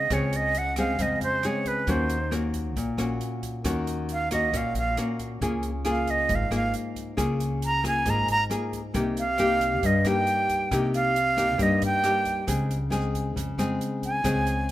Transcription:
Already playing: flute D#5
0.10 upright bass C#2, nylon-string guitar C#3 G#3 C4 G#4, flute C#5, kick, cross-stick, closed hi-hat
0.33 flute D#5, closed hi-hat
0.55 flute F#5, closed hi-hat
0.76 nylon-string guitar G#3 C4 G#4, flute F5, kick, cross-stick, closed hi-hat
0.99 upright bass F2, nylon-string guitar C#3 G#3 C4 G#4, flute D#5, kick, closed hi-hat
1.21 upright bass F2, flute C5, closed hi-hat
1.43 nylon-string guitar G#3 C4 G#4, flute C#5, cross-stick, closed hi-hat
1.65 flute B4, kick, closed hi-hat
1.87 upright bass D#2, nylon-string guitar D#3 A#3 C#4 F#4, flute C5, kick, closed hi-hat
2.10 closed hi-hat
2.31 nylon-string guitar A#3 C#4 F#4, cross-stick, closed hi-hat
2.54 kick, closed hi-hat
2.76 upright bass A#1, nylon-string guitar A#2, kick, closed hi-hat
2.98 upright bass A#1, nylon-string guitar A#3 C#4 F#4, cross-stick, closed hi-hat
3.21 closed hi-hat
3.42 kick, closed hi-hat
3.64 upright bass D#2, nylon-string guitar D#3 A#3 C#4 F#4, kick, cross-stick, closed hi-hat
3.87 closed hi-hat
4.09 closed hi-hat
4.13 flute F5
4.31 nylon-string guitar A#3 C#4 F#4, flute D#5, kick, cross-stick, closed hi-hat
4.53 upright bass A#1, nylon-string guitar A#2 A#3 C#4 F#4, kick, closed hi-hat
4.57 flute F5
4.75 upright bass A#1, flute F5, closed hi-hat
4.97 nylon-string guitar A#3 C#4 F#4, cross-stick, closed hi-hat
5.19 kick, closed hi-hat
5.41 upright bass C#2, nylon-string guitar C#3 A#3 F4 G#4, kick, closed hi-hat
5.63 closed hi-hat
5.85 nylon-string guitar A#3 F4 G#4, cross-stick, closed hi-hat
5.90 flute F5
6.07 flute D#5, kick, closed hi-hat
6.29 upright bass G#1, nylon-string guitar G#2, kick, closed hi-hat
6.35 flute F5
6.51 upright bass G#1, nylon-string guitar A#3 F4 G#4, cross-stick, closed hi-hat
6.55 flute F5
6.74 closed hi-hat
6.96 kick, closed hi-hat
7.17 upright bass C#2, nylon-string guitar C#3 A#3 F4 G#4, kick, cross-stick, closed hi-hat
7.40 closed hi-hat
7.62 flute A#5, closed hi-hat
7.83 nylon-string guitar A#3 F4 G#4, kick, cross-stick, closed hi-hat
7.88 flute G#5
8.05 upright bass G#1, nylon-string guitar G#2 A#3 F4 G#4, kick, closed hi-hat
8.10 flute A#5
8.28 upright bass G#1, flute A#5, closed hi-hat
8.50 nylon-string guitar A#3 F4 G#4, cross-stick, closed hi-hat
8.73 kick, closed hi-hat
8.94 upright bass C2, nylon-string guitar C3 A#3 D#4 G4, kick, closed hi-hat
9.17 flute F5, closed hi-hat
9.38 nylon-string guitar A#3 D#4 G4, cross-stick, closed hi-hat
9.61 kick, closed hi-hat
9.83 upright bass G2, nylon-string guitar G2, flute D#5, kick, closed hi-hat
10.04 upright bass G2, nylon-string guitar A#3 D#4 G4, flute G5, cross-stick, closed hi-hat
10.27 closed hi-hat
10.49 kick, closed hi-hat
10.71 upright bass C2, nylon-string guitar C3 A#3 D#4 G4, kick, cross-stick, closed hi-hat
10.94 flute F5, closed hi-hat
11.16 closed hi-hat
11.37 nylon-string guitar A#3 D#4 G4, kick, cross-stick, closed hi-hat
11.58 nylon-string guitar G2 A#3 D#4 G4, upright bass G2, kick, closed hi-hat
11.63 flute D#5
11.82 upright bass G2, flute G5, closed hi-hat
12.03 nylon-string guitar A#3 D#4 G4, cross-stick, closed hi-hat
12.25 kick, closed hi-hat
12.47 upright bass C#2, nylon-string guitar C#3 G#3 C4 G#4, kick, closed hi-hat
12.71 closed hi-hat
12.90 nylon-string guitar G#3 C4 G#4, cross-stick, closed hi-hat
13.14 kick, closed hi-hat
13.36 upright bass F2, nylon-string guitar C#3, kick, closed hi-hat
13.58 upright bass F2, nylon-string guitar G#3 C4 G#4, cross-stick, closed hi-hat
13.81 closed hi-hat
14.02 flute G#5, kick, closed hi-hat
14.24 upright bass C#2, nylon-string guitar C#3 G#3 C4 G#4, kick, cross-stick, closed hi-hat
14.47 closed hi-hat

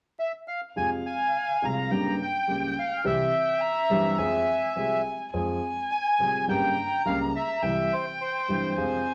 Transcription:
0.19 bandoneon E5
0.48 bandoneon F5
0.75 grand piano F2 C3 F3 G#3 F4, upright bass F2, violin F5, bandoneon G#5
1.06 bandoneon G#5
1.62 grand piano C2 C3 F3 G#3 F4, upright bass C2, bandoneon A#5
1.91 grand piano G1 G2 C#3 G3 A#3 G4, upright bass G1, violin G5
2.22 bandoneon G5
2.47 grand piano C#2 C#3 G3 A#3 G4, upright bass C#2
2.79 bandoneon F5
3.04 upright bass C2, grand piano C2 C3 E3 G3 C4 G4, bandoneon E5, violin G5
3.61 violin A#5
3.90 upright bass G1, grand piano G1 G2 E3 G3 C4 G4
4.18 upright bass F2, grand piano F2 F3 G#3 C4 G#4, violin G#5
4.75 grand piano C2 C3 F3 G#3 C4 G#4, upright bass C2, violin G#5
5.33 upright bass F2, grand piano F2 F3 G#3 C4 G#4, violin G#5
5.91 bandoneon G#5
6.19 upright bass C2, grand piano C2 C3 F3 G#3 C4 G#4
6.48 upright bass G1, grand piano G1 G2 C#3 G3 A#3 G4, bandoneon G5, violin A#5
7.06 upright bass C#2, grand piano C#2 C#3 G3 A#3 G4, bandoneon F5
7.36 bandoneon E5
7.63 upright bass C2, grand piano C2 C3 E3 G3 E4, violin G5
7.93 bandoneon C5
8.21 bandoneon C5
8.48 upright bass G1, grand piano G1 G2 C3 E3 G3 E4
8.77 upright bass F2, grand piano F2 C3 F3 G#3 F4, violin G#5

